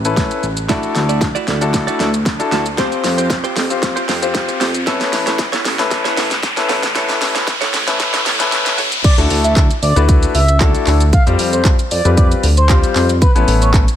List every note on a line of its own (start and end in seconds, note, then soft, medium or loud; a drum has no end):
0.00 0.31 A1 medium
0.00 riser medium
0.05 0.44 C#4 medium
0.05 0.44 E4 medium
0.05 0.44 A4 medium
0.05 0.44 B4 loud
0.05 closed hi-hat medium
0.05 shaker medium
0.17 kick loud
0.17 snare medium
0.17 closed hi-hat medium
0.17 shaker medium
0.31 closed hi-hat medium
0.31 shaker medium
0.43 0.83 A1 loud
0.43 shaker medium
0.57 closed hi-hat medium
0.57 shaker medium
0.69 0.93 A3 medium
0.69 1.25 D4 medium
0.69 1.25 E4 medium
0.69 0.94 E4 medium
0.69 1.25 F#4 medium
0.69 0.94 F#4 medium
0.69 1.25 A4 loud
0.69 0.94 D5 medium
0.69 kick loud
0.69 snare medium
0.69 closed hi-hat medium
0.69 shaker medium
0.83 closed hi-hat soft
0.83 shaker soft
0.95 1.36 D2 medium
0.95 muted clean electric guitar stroke soft
0.95 snare medium
0.95 shaker medium
1.09 1.20 A3 medium
1.09 1.21 E4 medium
1.09 1.21 F#4 medium
1.09 1.21 D5 medium
1.09 closed hi-hat soft
1.09 shaker medium
1.21 muted clean electric guitar stroke soft
1.21 kick loud
1.21 snare medium
1.21 closed hi-hat medium
1.21 shaker medium
1.35 1.46 A3 medium
1.35 1.47 E4 medium
1.35 1.47 F#4 medium
1.35 1.48 D5 medium
1.35 closed hi-hat medium
1.35 shaker medium
1.47 1.88 D2 medium
1.47 1.61 A3 medium
1.47 1.61 E4 medium
1.47 1.61 F#4 medium
1.47 1.60 D5 medium
1.47 snare medium
1.47 shaker medium
1.61 2.08 D4 medium
1.61 2.09 E4 medium
1.61 2.09 F#4 medium
1.61 2.09 A4 loud
1.61 muted clean electric guitar stroke medium
1.61 closed hi-hat soft
1.61 shaker medium
1.73 muted clean electric guitar stroke soft
1.73 kick loud
1.73 snare medium
1.73 closed hi-hat medium
1.73 shaker medium
1.87 1.98 A3 medium
1.87 1.99 E4 medium
1.87 1.99 F#4 medium
1.87 1.99 D5 medium
1.87 closed hi-hat medium
1.87 shaker medium
1.99 2.40 D2 medium
1.99 2.17 A3 medium
1.99 2.14 E4 medium
1.99 2.13 F#4 medium
1.99 2.12 D5 medium
1.99 snare medium
1.99 shaker medium
2.13 muted clean electric guitar stroke soft
2.13 closed hi-hat medium
2.13 shaker medium
2.26 kick loud
2.26 snare medium
2.26 closed hi-hat medium
2.26 shaker medium
2.39 2.63 D4 medium
2.39 2.63 E4 medium
2.39 2.63 F#4 medium
2.39 2.63 A4 loud
2.39 muted clean electric guitar stroke medium
2.39 closed hi-hat medium
2.39 shaker medium
2.52 2.92 D2 loud
2.52 2.69 A3 medium
2.52 2.66 E4 medium
2.52 2.65 F#4 medium
2.52 2.64 D5 medium
2.52 snare medium
2.52 shaker medium
2.66 muted clean electric guitar stroke medium
2.66 closed hi-hat soft
2.66 shaker medium
2.78 3.02 C4 medium
2.78 3.33 C4 medium
2.78 3.34 F4 medium
2.78 3.02 F4 medium
2.78 3.34 G4 medium
2.78 3.03 G4 loud
2.78 3.34 C5 medium
2.78 3.03 C5 loud
2.78 kick loud
2.78 snare medium
2.78 closed hi-hat medium
2.78 shaker medium
2.92 closed hi-hat soft
2.92 shaker soft
3.04 3.44 F2 loud
3.04 snare medium
3.04 open hi-hat medium
3.04 shaker medium
3.18 3.29 C4 medium
3.18 3.29 F4 medium
3.18 3.30 G4 medium
3.18 3.30 C5 medium
3.18 closed hi-hat medium
3.18 shaker medium
3.30 muted clean electric guitar stroke soft
3.30 kick loud
3.30 snare medium
3.30 closed hi-hat medium
3.30 shaker medium
3.44 3.55 C4 medium
3.44 3.56 F4 medium
3.44 3.56 G4 medium
3.44 3.57 C5 medium
3.44 closed hi-hat medium
3.44 shaker medium
3.56 3.96 F2 medium
3.56 3.70 C4 medium
3.56 3.70 F4 medium
3.56 3.70 G4 medium
3.56 3.69 C5 medium
3.56 snare loud
3.56 open hi-hat medium
3.56 shaker medium
3.70 4.01 C4 medium
3.70 4.01 F4 medium
3.70 4.02 G4 medium
3.70 4.02 C5 loud
3.70 muted clean electric guitar stroke soft
3.70 closed hi-hat soft
3.70 shaker medium
3.82 muted clean electric guitar stroke soft
3.82 kick loud
3.82 snare loud
3.82 closed hi-hat medium
3.82 shaker medium
3.96 4.07 C4 medium
3.96 4.08 F4 medium
3.96 4.08 G4 medium
3.96 4.08 C5 medium
3.96 closed hi-hat medium
3.96 shaker medium
4.08 4.49 F2 medium
4.08 4.25 C4 medium
4.08 4.22 F4 medium
4.08 4.22 G4 medium
4.08 4.21 C5 medium
4.08 snare loud
4.08 open hi-hat medium
4.08 shaker medium
4.22 4.61 C4 medium
4.22 4.61 F4 medium
4.22 4.61 G4 medium
4.22 4.61 C5 loud
4.22 muted clean electric guitar stroke medium
4.22 closed hi-hat medium
4.22 shaker medium
4.35 kick loud
4.35 snare loud
4.35 closed hi-hat medium
4.35 shaker medium
4.48 muted clean electric guitar stroke soft
4.48 closed hi-hat medium
4.48 shaker medium
4.60 5.01 F2 loud
4.60 4.78 C4 medium
4.60 4.74 F4 medium
4.60 4.74 G4 medium
4.60 4.73 C5 medium
4.60 snare loud
4.60 open hi-hat medium
4.60 shaker medium
4.74 muted clean electric guitar stroke soft
4.74 closed hi-hat medium
4.74 shaker medium
4.86 5.11 B3 medium
4.86 5.42 C#4 loud
4.86 5.42 E4 medium
4.86 5.11 E4 medium
4.86 5.42 A4 medium
4.86 5.11 A4 medium
4.86 5.42 B4 loud
4.86 5.12 C#5 loud
4.86 kick loud
4.86 snare loud
4.86 closed hi-hat medium
4.86 shaker medium
5.01 snare loud
5.01 closed hi-hat soft
5.01 shaker soft
5.13 5.53 A1 medium
5.13 snare loud
5.13 open hi-hat medium
5.13 shaker medium
5.26 5.38 B3 medium
5.26 5.38 E4 medium
5.26 5.38 A4 medium
5.26 5.39 C#5 medium
5.26 snare loud
5.26 closed hi-hat medium
5.26 shaker medium
5.39 muted clean electric guitar stroke soft
5.39 kick loud
5.39 snare loud
5.39 closed hi-hat medium
5.39 shaker medium
5.52 5.63 B3 medium
5.52 5.64 E4 medium
5.52 5.65 A4 medium
5.52 5.65 C#5 medium
5.52 snare loud
5.52 closed hi-hat medium
5.52 shaker medium
5.64 6.05 A1 medium
5.64 5.78 B3 medium
5.64 5.79 E4 medium
5.64 5.78 A4 medium
5.64 5.77 C#5 medium
5.64 snare loud
5.64 open hi-hat medium
5.64 shaker medium
5.79 6.26 C#4 loud
5.79 6.26 E4 medium
5.79 6.26 A4 medium
5.79 6.26 B4 loud
5.79 snare loud
5.79 closed hi-hat soft
5.79 shaker medium
5.91 muted clean electric guitar stroke soft
5.91 kick loud
5.91 snare loud
5.91 closed hi-hat medium
5.91 shaker medium
6.04 6.15 B3 medium
6.04 6.16 E4 medium
6.04 6.17 A4 medium
6.04 6.17 C#5 medium
6.04 snare loud
6.04 closed hi-hat medium
6.04 shaker medium
6.17 6.57 A1 medium
6.17 6.34 B3 medium
6.17 6.31 E4 medium
6.17 6.30 A4 medium
6.17 6.29 C#5 medium
6.17 snare loud
6.17 open hi-hat medium
6.17 shaker medium
6.31 muted clean electric guitar stroke soft
6.31 snare loud
6.31 closed hi-hat medium
6.31 shaker medium
6.43 kick loud
6.43 snare loud
6.43 closed hi-hat medium
6.43 shaker medium
6.57 6.81 C#4 medium
6.57 6.81 E4 medium
6.57 6.81 A4 medium
6.57 6.81 B4 loud
6.57 muted clean electric guitar stroke soft
6.57 snare loud
6.57 closed hi-hat medium
6.57 shaker medium
6.69 7.09 A1 loud
6.69 6.86 B3 medium
6.69 6.83 E4 medium
6.69 6.82 A4 medium
6.69 6.82 C#5 medium
6.69 snare loud
6.69 open hi-hat medium
6.69 shaker medium
6.83 muted clean electric guitar stroke medium
6.83 snare loud
6.83 closed hi-hat medium
6.83 shaker medium
6.95 7.19 B3 medium
6.95 7.51 C#4 medium
6.95 7.51 E4 medium
6.95 7.20 E4 medium
6.95 7.51 A4 medium
6.95 7.20 A4 medium
6.95 7.51 B4 loud
6.95 7.20 C#5 medium
6.95 kick loud
6.95 snare loud
6.95 closed hi-hat medium
6.95 shaker medium
7.09 snare loud
7.09 closed hi-hat soft
7.09 shaker soft
7.21 7.62 A1 medium
7.21 muted clean electric guitar stroke soft
7.21 snare loud
7.21 open hi-hat medium
7.21 shaker medium
7.35 7.46 B3 medium
7.35 7.46 E4 medium
7.35 7.47 A4 medium
7.35 7.47 C#5 medium
7.35 snare loud
7.35 closed hi-hat soft
7.35 shaker medium
7.47 kick loud
7.47 snare loud
7.47 closed hi-hat medium
7.47 shaker medium
7.61 7.72 B3 medium
7.61 7.73 E4 medium
7.61 7.73 A4 medium
7.61 7.74 C#5 medium
7.61 snare loud
7.61 closed hi-hat medium
7.61 shaker medium
7.73 8.14 A1 medium
7.73 7.87 B3 medium
7.73 7.87 E4 medium
7.73 7.87 A4 medium
7.73 7.86 C#5 medium
7.73 snare loud
7.73 open hi-hat medium
7.73 shaker medium
7.87 8.19 C#4 medium
7.87 8.19 E4 medium
7.87 8.19 A4 medium
7.87 8.19 B4 loud
7.87 muted clean electric guitar stroke medium
7.87 snare loud
7.87 closed hi-hat soft
7.87 shaker medium
7.99 muted clean electric guitar stroke soft
7.99 kick loud
7.99 snare loud
7.99 closed hi-hat medium
7.99 shaker medium
8.13 8.24 B3 medium
8.13 8.25 E4 medium
8.13 8.26 A4 medium
8.13 8.26 C#5 medium
8.13 snare loud
8.13 closed hi-hat medium
8.13 shaker medium
8.25 8.66 A1 medium
8.25 8.43 B3 medium
8.25 8.40 E4 medium
8.25 8.39 A4 medium
8.25 8.38 C#5 medium
8.25 snare loud
8.25 open hi-hat medium
8.25 shaker medium
8.39 8.78 C#4 loud
8.39 8.78 E4 medium
8.39 8.79 A4 medium
8.39 8.79 B4 loud
8.39 muted clean electric guitar stroke soft
8.39 snare loud
8.39 closed hi-hat medium
8.39 shaker medium
8.52 snare loud
8.52 closed hi-hat medium
8.52 shaker medium
8.65 muted clean electric guitar stroke soft
8.65 snare loud
8.65 closed hi-hat medium
8.65 shaker medium
8.78 8.98 A1 loud
8.78 8.95 B3 medium
8.78 8.92 E4 medium
8.78 8.91 A4 loud
8.78 8.90 C#5 loud
8.78 open hi-hat medium
8.78 shaker medium
8.92 muted clean electric guitar stroke medium
8.92 closed hi-hat medium
8.92 shaker medium
9.04 9.14 D5 loud
9.04 kick loud
9.04 closed hi-hat medium
9.04 crash loud
9.04 shaker medium
9.18 9.27 D2 medium
9.18 9.65 A3 medium
9.18 9.65 D4 medium
9.18 9.65 E4 medium
9.18 9.65 F#4 medium
9.18 9.65 A4 loud
9.18 closed hi-hat soft
9.18 shaker soft
9.30 9.70 D2 loud
9.30 open hi-hat medium
9.30 shaker medium
9.44 9.53 E5 medium
9.44 closed hi-hat medium
9.44 shaker medium
9.56 kick loud
9.56 clap loud
9.56 closed hi-hat medium
9.56 shaker medium
9.71 closed hi-hat medium
9.71 shaker medium
9.82 9.93 D2 medium
9.82 10.01 D5 medium
9.82 open hi-hat medium
9.82 shaker medium
9.96 10.26 D2 medium
9.96 10.35 A3 medium
9.96 10.35 D4 medium
9.96 10.35 E4 medium
9.96 10.35 F#4 medium
9.96 10.35 B4 loud
9.96 closed hi-hat soft
9.96 shaker medium
10.09 kick loud
10.09 closed hi-hat medium
10.09 shaker medium
10.23 closed hi-hat medium
10.23 shaker medium
10.34 10.75 C#2 medium
10.34 10.72 E5 medium
10.34 open hi-hat medium
10.34 shaker medium
10.48 closed hi-hat medium
10.48 shaker medium
10.61 11.01 A3 medium
10.61 11.01 D4 medium
10.61 11.01 E4 medium
10.61 11.01 F#4 medium
10.61 11.01 A4 loud
10.61 kick loud
10.61 clap loud
10.61 closed hi-hat medium
10.61 shaker medium
10.75 closed hi-hat medium
10.75 shaker medium
10.87 11.17 D2 loud
10.87 clap medium
10.87 open hi-hat medium
10.87 shaker medium
11.00 closed hi-hat medium
11.00 shaker medium
11.13 11.23 F5 loud
11.13 kick loud
11.13 closed hi-hat medium
11.13 shaker medium
11.27 11.36 F2 medium
11.27 11.74 G3 medium
11.27 11.74 C4 medium
11.27 11.74 F4 medium
11.27 11.74 G4 medium
11.27 11.74 C5 loud
11.27 closed hi-hat soft
11.27 shaker soft
11.39 11.79 F2 loud
11.39 open hi-hat medium
11.39 shaker medium
11.53 11.62 C5 medium
11.53 closed hi-hat soft
11.53 shaker medium
11.65 kick loud
11.65 clap loud
11.65 closed hi-hat medium
11.65 shaker medium
11.79 closed hi-hat medium
11.79 shaker medium
11.91 12.02 F2 loud
11.91 12.10 D5 medium
11.91 open hi-hat medium
11.91 shaker medium
12.05 12.34 F2 medium
12.05 12.44 G3 medium
12.05 12.44 C4 medium
12.05 12.44 F4 medium
12.05 12.44 G4 medium
12.05 12.44 B4 medium
12.05 closed hi-hat medium
12.05 shaker medium
12.17 12.27 D5 medium
12.17 kick loud
12.17 closed hi-hat medium
12.17 shaker medium
12.32 closed hi-hat medium
12.32 shaker medium
12.43 12.83 D2 medium
12.43 open hi-hat medium
12.43 shaker medium
12.57 12.76 C5 medium
12.57 closed hi-hat medium
12.57 shaker medium
12.69 13.10 G3 medium
12.69 13.10 C4 medium
12.69 13.10 F4 medium
12.69 13.10 G4 medium
12.69 13.10 C5 loud
12.69 kick loud
12.69 clap loud
12.69 closed hi-hat medium
12.69 shaker medium
12.84 closed hi-hat medium
12.84 shaker medium
12.96 13.26 F2 medium
12.96 clap medium
12.96 open hi-hat medium
12.96 shaker medium
13.09 closed hi-hat medium
13.09 shaker medium
13.21 13.31 B4 loud
13.21 kick loud
13.21 closed hi-hat medium
13.21 shaker medium
13.35 13.45 A1 medium
13.35 13.82 B3 medium
13.35 13.82 C#4 medium
13.35 13.83 E4 medium
13.35 13.83 A4 medium
13.35 13.83 B4 medium
13.35 closed hi-hat soft
13.35 shaker soft
13.48 13.88 A1 loud
13.48 open hi-hat medium
13.48 shaker medium
13.62 13.70 C#5 medium
13.62 closed hi-hat medium
13.62 shaker medium
13.74 kick loud
13.74 clap loud
13.74 closed hi-hat medium
13.74 shaker medium
13.88 closed hi-hat medium
13.88 shaker medium